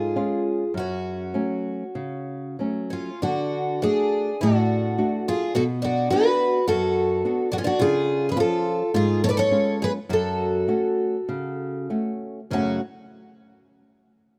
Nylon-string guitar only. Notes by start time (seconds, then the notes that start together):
Already playing: G#2
0.16 G#3 C#4 F4
0.74 F#2
1.34 F#3 A3 C#4
1.95 C#3
2.59 F#3 A3 C#4
3.23 D3
3.82 A3 D4 F#4
4.43 A2
4.98 A3 D4 F#4
5.55 B2
6.12 B3 D4 F#4
6.69 F#2
7.25 B3 D4 F#4
7.81 C#3
8.36 F3 C#4 F4
8.94 G#2
9.51 G#3 C#4 F4
10.09 F#2
10.68 A3 C#4 F#4
11.29 C#3
11.90 A3 C#4 F#4
12.50 F#2 C#3 F#3 A3 C#4